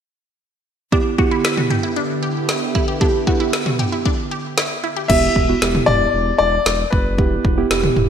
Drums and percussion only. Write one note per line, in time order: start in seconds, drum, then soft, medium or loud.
0.92 kick loud
1.19 kick medium
1.45 snare loud
1.57 mid tom medium
1.70 mid tom medium
2.49 snare loud
2.75 kick medium
3.01 kick loud
3.27 kick medium
3.53 snare loud
3.66 mid tom medium
3.79 mid tom medium
4.06 kick medium
4.58 snare loud
5.10 kick loud
5.10 crash medium
5.36 kick medium
5.62 snare loud
5.75 mid tom medium
5.88 mid tom medium
6.66 snare loud
6.93 kick loud
7.18 kick loud
7.45 kick medium
7.71 snare loud
7.84 mid tom medium
7.96 mid tom medium